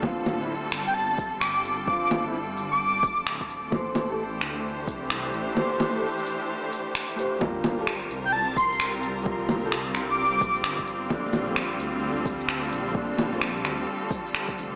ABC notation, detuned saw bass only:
X:1
M:4/4
L:1/8
Q:"Swing 16ths" 1/4=130
K:Gdor
V:1 name="Detuned saw bass" clef=bass
D,,,3 G,,,4- G,,,- | G,,,3 G,,,2 F,,, D,,,2 | A,,,3 D,,2 C,,2 A,,, | z8 |
G,,,3 C,,4- C,,- | C,,3 C,,2 B,,, G,,,2 | B,,,3 D,,2 D,,2 B,,,- | B,,,3 D,, z3 F,,, |]